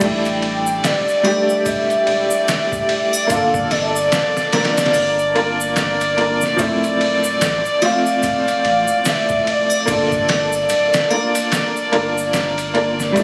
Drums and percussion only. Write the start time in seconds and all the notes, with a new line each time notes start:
0.00 kick, crash, ride, shaker
0.25 ride, shaker
0.42 ride
0.67 shaker
0.84 snare, ride, shaker
1.08 shaker
1.25 ride, triangle
1.49 shaker
1.66 kick, ride, shaker
1.90 ride, shaker
2.07 ride
2.31 shaker
2.48 snare, ride, shaker
2.72 kick, shaker
2.89 ride
3.13 triangle, shaker
3.30 kick, ride, shaker
3.54 kick, shaker
3.71 snare, ride, triangle
3.96 shaker
4.12 snare, ride, shaker
4.37 snare, shaker
4.53 snare, ride, triangle
4.65 snare, ride
4.77 snare, ride, shaker
4.86 snare, ride
4.94 open hi-hat, shaker
5.19 shaker
5.36 ride
5.61 shaker
5.76 snare, ride, shaker
6.01 ride, shaker
6.18 ride
6.41 snare, shaker
6.58 kick, ride, shaker
6.84 ride, shaker
7.01 ride
7.24 shaker
7.41 snare, ride, shaker
7.66 shaker
7.82 ride, triangle
8.06 shaker
8.23 kick, ride, shaker
8.48 ride, shaker
8.65 ride
8.88 shaker
9.05 snare, ride, shaker
9.29 kick, shaker
9.47 ride
9.70 triangle, shaker
9.87 kick, ride, shaker
10.12 kick, shaker
10.28 snare, ride, triangle
10.52 shaker
10.69 ride, shaker
10.94 snare, ride, shaker
11.11 triangle
11.35 ride, shaker
11.52 snare, ride, shaker
11.76 shaker
11.93 ride
12.18 shaker
12.33 snare, ride, shaker
12.58 ride, shaker
12.75 ride
13.00 snare, shaker
13.16 kick, ride, shaker